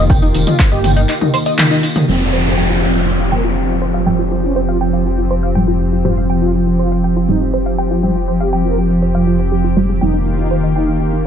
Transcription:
Already playing: F1 D#3 A#3 F4 G4
0.09 D#3 G5, kick, closed hi-hat, mid tom, tambourine
0.22 D#4, tambourine
0.34 F1 D#3 D#4, open hi-hat, tambourine
0.47 D#4 F4, closed hi-hat, mid tom, tambourine
0.59 D#3 C5, kick, clap, closed hi-hat, tambourine
0.72 G1 G4 D#5, tambourine
0.84 D#3 G5, open hi-hat, mid tom, tambourine
0.96 D#3 D#4, closed hi-hat, tambourine
1.09 D#4, clap, closed hi-hat, tambourine
1.21 D#3 D#4, mid tom, tambourine
1.34 D#3 C5, open hi-hat, tambourine
1.46 D#5, open hi-hat, tambourine
1.58 D#3 G5, clap, closed hi-hat, mid tom, tambourine
1.71 D#3 D#4, tambourine
1.83 D#4, open hi-hat, tambourine
1.96 D#3 D#4, closed hi-hat, mid tom, tambourine
2.08 F1 G#2 F3 G3 C4 F4 G4, crash, downlifter
2.20 F3 F4
2.33 F3 C5
2.45 C4 F5
2.57 F3 G5
2.70 F3 F4
2.82 C4 F4
2.95 F3 F4
3.07 F3 C5
3.20 F3 F5
3.32 G#2 F3 G3 A#3 G5
3.44 F3 F4
3.57 F4
3.69 F3 F4
3.82 C5
3.94 F3 F5
4.06 G#2 F3 G3 G5
4.19 F4
4.31 F3 F4
4.44 C#4 F4
4.56 F3 C5
4.68 F4 F5
4.81 F3 G5
4.93 F3 F4
5.06 F4
5.18 F3 F4
5.30 F3 C5
5.43 F5
5.55 G#2 F3 G3 G5
5.68 F3 F4
5.80 F4
5.93 F3 F4
6.05 G#2 F3 G3 F4 C5
6.17 F3 F5
6.30 F3 G5
6.42 F4
6.54 F3 F4
6.67 F3 F4
6.79 F4 C5
6.92 F3 F5
7.04 F3 G5
7.16 F3 F4
7.29 G#2 F3 G3 D#4 F4
7.41 F3 F4
7.54 C5
7.66 F3 F5
7.78 G5
7.91 F3 F4
8.03 G#2 F3 G3 F4
8.16 F4
8.28 F3 C5
8.40 G4 F5
8.53 F3 G5
8.65 F4 A#4
8.77 F3 F4
8.90 F3 F4
9.02 C5
9.15 F3 F5
9.27 F3 F4
9.39 C5
9.52 F3 G4
9.64 F3 F4
9.77 G#2 F3 G3 C5
9.89 F3 G#4
10.01 F1 C3 D#3 G3 A#3 D#4 F4 G5
10.14 D#3 D#4
10.26 D#3 D#4
10.38 D#4
10.51 D#3 C5
10.63 D#3 D#5
10.76 D#4 G5
10.88 D#3 D#4
11.00 D#3 D#4
11.13 D#3 D#4

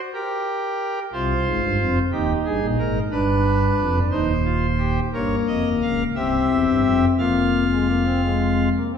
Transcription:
0.14 G4 A#4
1.13 C2 C3 F4 C5
1.46 G#1 G#2
1.62 G1 G2
1.77 F1 F2
2.12 D#1 D#2 D#4 G4
2.45 G1 G2 G#4
2.62 A#1 A#2
2.79 G#1 G#2 A#4
3.11 G1 G2 D4 B4
3.79 F1 F2
4.11 D#1 D#2 D#4 C5
4.45 F4
4.78 G4
5.13 G1 G2 A#3 A#4 C#5
5.47 F1 F2 D#5
5.65 D#1 D#2
5.82 C#1 C#2 F5
6.16 C1 C2 C4 G4 E5
6.50 E1 E2
6.67 G1 G2
6.84 F1 F2
7.18 F1 F2 A#3 F4 F5
7.71 G#3
7.89 A#3
8.05 C4
8.23 G#3
8.76 A#3
8.94 C4

